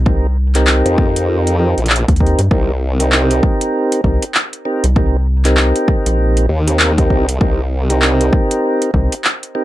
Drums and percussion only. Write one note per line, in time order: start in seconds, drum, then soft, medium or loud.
0.06 kick loud
0.55 clap soft
0.55 closed hi-hat medium
0.67 clap loud
0.86 closed hi-hat medium
0.98 kick loud
1.16 closed hi-hat medium
1.47 closed hi-hat medium
1.78 closed hi-hat soft
1.86 clap loud
1.86 closed hi-hat soft
1.96 closed hi-hat medium
2.08 kick loud
2.08 closed hi-hat soft
2.16 closed hi-hat soft
2.20 kick medium
2.27 closed hi-hat soft
2.39 closed hi-hat medium
2.51 kick loud
3.00 closed hi-hat medium
3.12 clap loud
3.31 closed hi-hat medium
3.43 kick loud
3.61 closed hi-hat medium
3.92 closed hi-hat medium
4.04 kick medium
4.22 closed hi-hat medium
4.34 clap loud
4.53 closed hi-hat soft
4.84 closed hi-hat medium
4.96 kick loud
5.45 clap soft
5.45 closed hi-hat medium
5.57 clap loud
5.76 closed hi-hat medium
5.88 kick loud
6.06 closed hi-hat medium
6.37 closed hi-hat soft
6.68 closed hi-hat medium
6.79 clap loud
6.98 kick loud
6.98 closed hi-hat soft
7.10 kick medium
7.29 closed hi-hat medium
7.41 kick loud
7.90 closed hi-hat medium
8.02 clap loud
8.21 closed hi-hat soft
8.33 kick loud
8.51 closed hi-hat medium
8.82 closed hi-hat medium
8.94 kick medium
9.12 closed hi-hat medium
9.24 clap loud
9.43 closed hi-hat soft